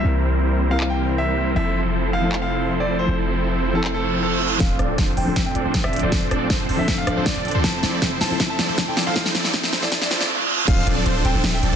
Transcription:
Already playing: analog synth pad C3 E3 G3 A#3 E4, supersaw synth G3 C4 E4 A#4 C5, grand piano E5
0.03 808-style bass C2, synth pluck G3 C4 E4 A#4
0.69 synth pluck G3 C4 E4, grand piano F5
0.73 synth pluck A#4
0.80 clap
0.90 grand piano G5
1.18 grand piano E5
1.54 808-style bass F1, analog synth pad C3 F3 A3, synth pluck F3 C4 E4, supersaw synth F3 C4 E4 A4 C5, grand piano E5
1.58 synth pluck A4
2.13 grand piano F5
2.21 synth pluck F3 C4 E4
2.25 synth pluck A4
2.32 clap
2.42 grand piano F5
2.80 grand piano D5
2.99 grand piano C5
3.06 808-style bass F1, synth pluck F3 C4 E4 A4
3.73 synth pluck F3 C4 E4, grand piano A4
3.77 synth pluck A4
3.84 clap, reverse cymbal
3.94 grand piano A4
4.23 grand piano A4
4.58 808-style bass D1, analog synth pad D3 F3 A3 C4 F4, synth pluck F3 C4 D4, supersaw synth F3 C4 D4 C5, grand piano F5, kick, snare, closed hi-hat, riser
4.62 synth pluck A4
4.79 808-style bass D1, supersaw synth F3 C4 D4 A4 D5, cross-stick, closed hi-hat
4.98 808-style bass D1, supersaw synth F3 C4 D4 A4 C5, kick, snare, closed hi-hat
5.17 808-style bass D1, supersaw synth F3 C4 D4 A4 C5, grand piano G5, open hi-hat
5.25 808-style bass D1, synth pluck F3 C4 D4 A4, supersaw synth F3 C4 D4 A4 C5
5.36 supersaw synth C4 D4 A4, kick, snare, closed hi-hat
5.46 grand piano G5
5.55 808-style bass D1, supersaw synth F3 C4 D4 A4 D5, closed hi-hat
5.65 808-style bass D1, supersaw synth F3 C4 D4 A4 C5
5.74 kick, snare, closed hi-hat
5.84 808-style bass D1, supersaw synth F3 C4 D4 A4 D5, grand piano E5, cross-stick
5.93 closed hi-hat
5.96 closed hi-hat
5.99 808-style bass D1, supersaw synth F3 C4 D4 A4 C5, grand piano D5, closed hi-hat
6.10 synth pluck F3 C4 D4 A4, kick, snare, closed hi-hat
6.31 808-style bass D1, supersaw synth F3 C4 D4 A4 D5, cross-stick, closed hi-hat
6.50 808-style bass D1, supersaw synth F3 C4 D4 A4 C5, kick, snare, closed hi-hat
6.69 808-style bass D1, supersaw synth F3 C4 D4 A4 C5, open hi-hat
6.77 808-style bass D1, synth pluck F3 C4 D4, supersaw synth F3 C4 D4 A4 C5, grand piano E5
6.81 synth pluck A4
6.88 808-style bass D1, supersaw synth F3 D4 A4, kick, snare, closed hi-hat
6.98 grand piano F5
7.07 808-style bass D1, supersaw synth F3 C4 D4 A4 D5, cross-stick, closed hi-hat
7.17 808-style bass D1, supersaw synth F3 C4 D4 A4 C5
7.26 grand piano D5, kick, snare, closed hi-hat
7.36 808-style bass D1, supersaw synth F3 C4 D4 A4 D5
7.45 closed hi-hat
7.48 closed hi-hat
7.51 808-style bass D2, supersaw synth F3 C4 D4 A4 C5, closed hi-hat
7.62 808-style bass F1, analog synth pad C3 E4, synth pluck F3 C4 E4, supersaw synth F3 C4 E4 A4 C5, grand piano A5, kick, snare, closed hi-hat
7.66 synth pluck A4
7.83 808-style bass F1, supersaw synth F3 C4 E4 A4 D5, snare, closed hi-hat
8.02 808-style bass F1, kick, snare, closed hi-hat
8.21 808-style bass F1, supersaw synth F3 C4 E4 A4 C5, grand piano A5, snare, open hi-hat
8.29 808-style bass F1, synth pluck F3 C4 E4 A4, supersaw synth F3 C4 E4 A4 C5
8.40 808-style bass F1, supersaw synth F3 C4 E4 A4 E5, kick, snare, closed hi-hat
8.50 grand piano A5
8.59 808-style bass F1, supersaw synth F3 C4 E4 A4 D5, snare, closed hi-hat
8.68 808-style bass F1, supersaw synth F3 C4 E4 A4 C5
8.78 kick, snare, closed hi-hat
8.87 808-style bass F1, supersaw synth F3 C4 E4 A4 D5, grand piano G5
8.97 snare, closed hi-hat
9.00 closed hi-hat
9.03 808-style bass F1, supersaw synth F3 C4 E4 A4 C5, grand piano F5, closed hi-hat
9.14 808-style bass F1, synth pluck F3 C4 E4 A4, supersaw synth F3 C4 E4 A4, kick, snare, closed hi-hat
9.26 snare
9.35 808-style bass F1, supersaw synth F3 C4 E4 A4 D5, snare, closed hi-hat
9.44 snare
9.54 808-style bass F1, supersaw synth F3 A4, kick, snare, closed hi-hat
9.64 snare
9.73 808-style bass F1, supersaw synth F3 C4 E4 A4 C5, snare, open hi-hat
9.81 808-style bass F1, synth pluck F3 C4 E4 A4, supersaw synth F3 C4 E4 A4 C5, grand piano D5, snare
9.92 808-style bass F1, supersaw synth F3 C4 E4 A4 E5, kick, snare, closed hi-hat, reverse cymbal
10.02 grand piano D5, snare
10.11 808-style bass F1, supersaw synth F3 C4 E4 A4 C5, snare, closed hi-hat
10.21 808-style bass F1, supersaw synth F3 C4 E4 A4 D5, snare
10.68 808-style bass D1, supersaw synth F3 C4 D4 A4 C5, grand piano F5, kick, closed hi-hat, crash, impact
10.87 808-style bass D1, supersaw synth F3 C4 D4 A4 D5, closed hi-hat
11.06 808-style bass D1, supersaw synth F3 C4 D4 A4 C5, closed hi-hat
11.25 808-style bass D1, supersaw synth F3 C4 D4 A4 C5, grand piano G5, closed hi-hat
11.35 808-style bass D1, supersaw synth F3 C4 D4 A4 C5
11.44 808-style bass D1, supersaw synth F3 C4 D4 A4 E5, snare, closed hi-hat
11.54 grand piano G5
11.63 808-style bass D1, supersaw synth F3 C4 D4 A4 D5, closed hi-hat
11.72 808-style bass D1, supersaw synth F3 C4 D4 A4 C5

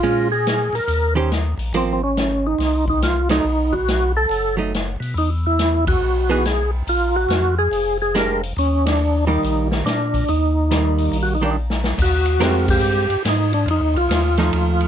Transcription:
Already playing: tonewheel organ F4
0.03 tonewheel organ A#2, hollow-body jazz guitar G#3 C#4 F4
0.32 tonewheel organ G#4
0.47 snare, closed hi-hat
0.73 tonewheel organ A#2 A#4, open hi-hat
0.88 tonewheel organ D#2, open hi-hat
1.15 hollow-body jazz guitar D#3 C#4 G4 C5
1.32 snare, closed hi-hat
1.58 tonewheel organ A#1, open hi-hat
1.73 tonewheel organ G#1, hollow-body jazz guitar F3 A#3 C4, open hi-hat
1.77 tonewheel organ C4
1.93 tonewheel organ C4
2.04 tonewheel organ C#4
2.17 snare, closed hi-hat
2.47 tonewheel organ D#4
2.59 tonewheel organ C2, snare, open hi-hat
2.88 tonewheel organ D#4, kick
3.02 tonewheel organ F4, snare, closed hi-hat
3.29 hollow-body jazz guitar F#3 A3 D#4, tonewheel organ D#4, snare, ride
3.44 tonewheel organ B1
3.72 tonewheel organ F#4, kick
3.88 snare, closed hi-hat
4.17 tonewheel organ A4
4.29 tonewheel organ F#1, open hi-hat
4.57 hollow-body jazz guitar F#3 A3 D#4
4.75 snare, closed hi-hat
5.00 tonewheel organ B2, open hi-hat
5.14 tonewheel organ E2 D#4, open hi-hat
5.47 tonewheel organ E4
5.59 snare, closed hi-hat
5.87 tonewheel organ F#4, kick, ride
6.01 tonewheel organ B1
6.29 hollow-body jazz guitar E3 B3 D#4 G#4, tonewheel organ F#4
6.45 tonewheel organ G#4, snare, closed hi-hat
6.87 tonewheel organ A#1 F4, open hi-hat
7.16 tonewheel organ F#4
7.29 tonewheel organ F2, snare, closed hi-hat
7.58 tonewheel organ G#4
7.72 tonewheel organ F1, open hi-hat
8.02 tonewheel organ G#4
8.15 hollow-body jazz guitar G#3 D4 G4, tonewheel organ A#4, snare, closed hi-hat
8.43 open hi-hat
8.57 tonewheel organ D#2 C#4, open hi-hat
8.86 tonewheel organ D4, snare, ride
9.27 hollow-body jazz guitar D#3 G3 A#3, tonewheel organ D#4
9.43 tonewheel organ A#1, open hi-hat
9.71 snare
9.85 tonewheel organ A#2 D4, snare, closed hi-hat
10.14 kick, open hi-hat
10.28 tonewheel organ D#2 D#4, open hi-hat
10.71 hollow-body jazz guitar D#3 G3 A#3, snare, closed hi-hat
10.98 open hi-hat
11.12 tonewheel organ A#1, open hi-hat
11.23 tonewheel organ F#4
11.35 tonewheel organ D#4
11.41 hollow-body jazz guitar D#3 G3 A#3 D4
11.46 tonewheel organ D4
11.51 tonewheel organ D#4
11.70 snare
11.84 snare
11.98 tonewheel organ D#2, kick, crash
12.02 tonewheel organ F#4
12.26 ride
12.40 tonewheel organ F2, hollow-body jazz guitar G#3 C4 G4 A#4, snare, hi-hat pedal, ride
12.68 tonewheel organ G4, kick, crash
12.81 tonewheel organ G2
13.09 tonewheel organ G2, ride
13.25 tonewheel organ G#2 D#4, snare, hi-hat pedal, ride
13.53 tonewheel organ D4, ride
13.66 tonewheel organ F2, ride
13.71 tonewheel organ D#4
13.81 tonewheel organ D#2
13.94 tonewheel organ C2 F4, ride
14.09 tonewheel organ D#2, snare, hi-hat pedal, ride
14.37 hollow-body jazz guitar F3 A3 D#4, snare, ride
14.53 tonewheel organ D#2, ride
14.81 ride

